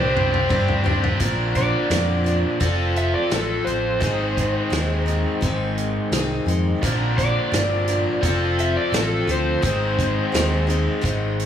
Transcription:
Already playing: picked electric bass C2, steel-string acoustic guitar C3 G3 C4 D4 G4, overdriven electric guitar G4, electric slide guitar C5
0.00 overdriven electric guitar C4 D4
0.14 overdriven electric guitar G3 C4 D4 G4, mid tom
0.31 overdriven electric guitar C4 D4 G4, mid tom
0.49 picked electric bass G2, overdriven electric guitar C3, steel-string acoustic guitar G3 C4 D4 G4, kick, mid tom
0.68 floor tom
0.84 overdriven electric guitar G3, steel-string acoustic guitar C4 D4 G4, floor tom
1.02 overdriven electric guitar C4 D4 G4, floor tom
1.20 picked electric bass A#1, steel-string acoustic guitar A#2 D3 F3 C4 D4 A#4, overdriven electric guitar A#3, kick, closed hi-hat
1.55 electric slide guitar D5, kick, closed hi-hat
1.90 picked electric bass F2, steel-string acoustic guitar F3 C4 D4 A#4, snare, closed hi-hat
2.24 steel-string acoustic guitar F3 C4 D4 A#4, closed hi-hat
2.60 picked electric bass F1, steel-string acoustic guitar F3 C4 F4 A4, kick, closed hi-hat
2.96 electric slide guitar E5, closed hi-hat
3.14 electric slide guitar D5
3.30 picked electric bass A1, steel-string acoustic guitar F3 C4 F4 A4, electric slide guitar A4, snare, closed hi-hat
3.65 picked electric bass A1, electric slide guitar C5, closed hi-hat
4.00 picked electric bass G#1, steel-string acoustic guitar G#2 D#3 G#3 C4 D#4 G#4, kick, closed hi-hat
4.37 kick, closed hi-hat
4.70 picked electric bass D#2, steel-string acoustic guitar G#3 C4 D#4 G#4, snare, closed hi-hat
5.06 steel-string acoustic guitar G#3 C4 D#4 G#4, closed hi-hat
5.41 picked electric bass G#1, steel-string acoustic guitar G#2 D#3 G#3 C4 D#4 G#4, kick, closed hi-hat
5.78 closed hi-hat
6.12 picked electric bass C2, steel-string acoustic guitar G#3 C4 D#4 G#4, snare, closed hi-hat
6.46 picked electric bass F2, steel-string acoustic guitar G#3 C4 D#4 G#4, closed hi-hat
6.83 picked electric bass A#1, steel-string acoustic guitar A#2 D3 F3 C4 D4 A#4, overdriven electric guitar A#3, kick, closed hi-hat
7.18 electric slide guitar D5, kick, closed hi-hat
7.52 picked electric bass G1, steel-string acoustic guitar F3 C4 D4 A#4, snare, closed hi-hat
7.88 steel-string acoustic guitar F3 C4 D4 A#4, closed hi-hat
8.23 picked electric bass F1, steel-string acoustic guitar F3 C4 F4 A4, kick, closed hi-hat
8.59 electric slide guitar E5, closed hi-hat
8.77 electric slide guitar D5
8.92 picked electric bass A1, steel-string acoustic guitar F3 C4 F4 A4, snare, closed hi-hat
8.96 electric slide guitar A4
9.27 picked electric bass D2, steel-string acoustic guitar C4 F4 A4, electric slide guitar C5, closed hi-hat
9.62 picked electric bass G#1, steel-string acoustic guitar G#2 D#3 G#3 C4 D#4 G#4, kick, closed hi-hat
9.99 kick, closed hi-hat
10.32 picked electric bass D#2, steel-string acoustic guitar G#3 C4 D#4 G#4, snare, closed hi-hat
10.67 steel-string acoustic guitar G#3 C4 D#4 G#4, closed hi-hat
11.01 picked electric bass G#1, steel-string acoustic guitar G#2 D#3 G#3 C4 D#4 G#4, kick, closed hi-hat
11.39 closed hi-hat

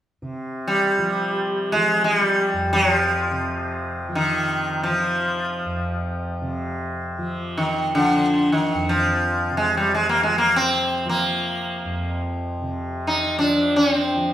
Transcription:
0.22 tanpura C3
0.68 sitar G3
0.98 tanpura F3
1.72 tanpura F3, sitar G#3
2.04 sitar G#3
2.19 sitar G3
2.53 tanpura F2
2.73 sitar F#3
2.93 sitar F3
3.31 tanpura C3
4.09 tanpura F3
4.15 sitar D#3
4.83 sitar F3
4.87 tanpura F3
5.65 tanpura F2
6.42 tanpura C3
7.18 tanpura F3
7.58 sitar D#3
7.95 sitar D3, tanpura F3
8.52 sitar D#3
8.74 tanpura F2
8.89 sitar F3
9.51 tanpura C3
9.57 sitar G#3
9.77 sitar G3
9.95 sitar G#3
10.09 sitar A#3
10.23 sitar G#3
10.29 tanpura F3
10.38 sitar A#3
10.56 sitar C4
11.06 tanpura F3, sitar A#3
11.85 tanpura F2
12.62 tanpura C3
13.07 sitar D#4
13.39 tanpura F3, sitar D4
13.76 sitar C#4
13.95 sitar C4
14.17 tanpura F3

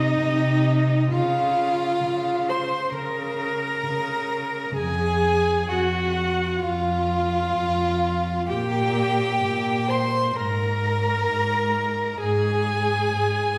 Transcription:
Already playing: violin D#4 D#5, viola D#4
0.19 cello C3
1.10 cello C#3, violin F4 F5, viola F4
2.05 cello C#3
2.49 viola C5, violin C5 C6
2.93 cello C#3, viola A#4, violin A#4 A#5
3.86 cello C#3
4.76 cello F2, viola G#4, violin G#4 G#5
5.69 cello F2, violin F#4 F#5, viola F#4
6.60 cello F2, violin F4 F5, viola F4
7.54 cello F2
8.49 cello A#2, violin G4 G5, viola G4
9.44 cello A#2
9.88 violin C5 C6, viola C5
10.34 cello G#2, violin A#4 A#5, viola A#4
11.28 cello G#2
12.19 cello G#2, viola G#4, violin G#4 G#5
13.13 cello G#2

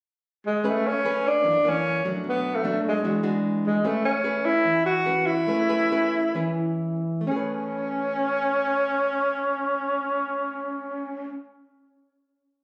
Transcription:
0.47 tenor saxophone G#3
0.64 nylon-string guitar A3 C#4 G#4 B4
0.69 tenor saxophone A3
0.87 tenor saxophone C#4
1.05 nylon-string guitar C#4 G#4 B4
1.27 tenor saxophone D4
1.44 nylon-string guitar F#2 E3 A#3 D4
1.64 nylon-string guitar E3 A#3, tenor saxophone C#4
2.05 nylon-string guitar F#3 A3 D4
2.24 nylon-string guitar B2
2.29 tenor saxophone B3
2.55 tenor saxophone A3
2.64 nylon-string guitar F#3 A3 D4
2.89 tenor saxophone G#3
3.04 nylon-string guitar E3 G#3 D4 F#4
3.23 nylon-string guitar G#3 D4 F#4
3.66 tenor saxophone G#3
3.84 nylon-string guitar A3 C#4 G#4 B4, tenor saxophone A3
4.05 tenor saxophone C#4
4.24 nylon-string guitar C#4 G#4 B4
4.45 tenor saxophone E4
4.64 nylon-string guitar E3
4.86 tenor saxophone F#4
5.06 nylon-string guitar C#4 G#4 B4
5.26 tenor saxophone E4
5.47 nylon-string guitar A3 C#4 G#4 B4
5.69 nylon-string guitar C#4 G#4 B4
5.92 nylon-string guitar C#4 G#4 B4
6.35 nylon-string guitar E3 C#4 G#4 B4
7.21 nylon-string guitar A3
7.27 tenor saxophone C#4, nylon-string guitar C#4
7.31 nylon-string guitar G#4
7.36 nylon-string guitar B4

